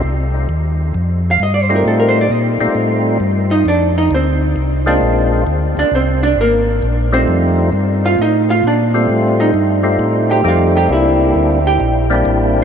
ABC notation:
X:1
M:4/4
L:1/16
Q:"Swing" 1/4=133
K:Fmix
V:1 name="Hollow-body jazz guitar"
z8 z3 f e d c B | A B c d e c z8 [Ee]2 | [Dd]2 [Ee]2 [Cc]6 [Dd]4 z2 | z2 [Dd]2 [Cc]2 [Dd]2 [B,B]6 [Cc]2- |
[Cc]2 z4 [Ff]2 [Ee]2 [Ff]2 [Dd]4- | [Dd]2 [Ee]4 z4 [Gg]2 [Ff]2 [Gg]2 | [=E=e]6 [Gg]4 z6 |]
V:2 name="Tonewheel organ"
z12 z2 [G,A,CEF]2- | [G,A,CEF]4 z2 [G,A,CEF]6 z4 | z8 z2 [_A,B,CDF]6 | z12 z2 [G,A,CEF]2- |
[G,A,CEF]4 z8 z2 [G,A,CF]2- | [G,A,CF]4 z2 [G,A,CEF]6 [G,A,CEG]4 | [G,B,CD=E]6 z4 [G,B,CDE]6 |]
V:3 name="Tonewheel organ" clef=bass
C,,4 E,,4 F,,4 G,,4 | A,,4 B,,2 B,,2 A,,4 G,,4 | F,,4 D,,4 C,,4 B,,,4 | D,,2 D,,2 C,,4 _A,,,4 B,,,4 |
F,,4 G,,4 A,,4 B,,4 | A,,4 G,,4 A,,4 F,,4 | C,,4 D,,4 B,,,4 A,,,4 |]